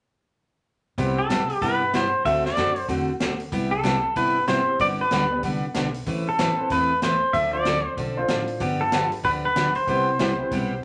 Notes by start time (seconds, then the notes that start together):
0.98 C2 C3 G3 B3 C4 E4 G4 B4, kick, open hi-hat
1.19 A4
1.30 C3 G3 B3 E4 G4, snare, closed hi-hat
1.50 open hi-hat
1.61 G2 C3 G3 B3 E4 G4 B4, kick, open hi-hat
1.93 C3 G3 B3 E4 G4 C5, snare, closed hi-hat
2.25 D2 D3 A3 C4 D4 F#4 A4 E5, kick, open hi-hat
2.45 D5, snare
2.57 F#2 D3 A3 C4 F#4 A4, snare, closed hi-hat
2.76 open hi-hat
2.88 E2 D3 A3 C4 F#4 A4, kick, open hi-hat
3.20 D2 D3 A3 C4 F#4 A4, snare, closed hi-hat
3.40 open hi-hat
3.52 C2 C3 G3 B3 E4 G4, kick, open hi-hat
3.71 A4
3.83 C3 G3 B3 E4 G4, snare, closed hi-hat
4.16 G1 C3 G3 B3 E4 G4 B4, kick, open hi-hat
4.47 C3 G3 B3 C4 E4 G4 C5, snare, closed hi-hat
4.79 G1 D3 G3 B3 D4 G4 D5, kick, open hi-hat
5.01 B4
5.11 D2 D3 G3 B3 D4 G4, snare, closed hi-hat
5.30 B3 D4 G4 B4
5.43 C2 D3 G3 B3 D4 G4, kick, open hi-hat
5.74 B1 D3 G3 B3 D4 G4, snare, closed hi-hat
5.94 open hi-hat
6.06 A1 E3 A3 C4 E4 B4, kick, open hi-hat
6.29 A4
6.39 E3 A3 C4 E4 B4, snare, closed hi-hat
6.57 C4 E4 A4 B4
6.70 E2 E3 A3 C4 E4 B4, kick, open hi-hat
7.02 E3 A3 C4 E4 B4 C5, snare, closed hi-hat
7.33 D2 D3 F3 C4 D4 A4 E5, kick, open hi-hat
7.53 D4 F4 A4 C5 D5
7.65 D3 F3 C4 D4 A4, snare, closed hi-hat
7.97 B1 D3 F3 C4 D4 A4, kick, open hi-hat
8.16 D4 F4 A4 C5
8.28 A1 D3 F3 C4 D4 A4, snare, closed hi-hat
8.48 open hi-hat
8.60 G1 D3 F3 B3 D4 G4, kick, open hi-hat
8.81 A4
8.92 D3 F3 B3 D4 F4 G4 B4, snare, closed hi-hat
9.12 open hi-hat
9.23 D2 D3 F3 B3 D4 G4 B4, kick, open hi-hat
9.45 B4
9.56 D3 F3 B3 D4 G4, snare, closed hi-hat
9.75 C5, open hi-hat
9.87 C2 C3 G3 B3 C4 E4 G4 B4, kick, open hi-hat
10.19 C3 G3 B3 E4 G4, snare, closed hi-hat
10.39 C4 E4 G4 B4
10.51 B1 C3 G3 B3 E4 G4, kick, open hi-hat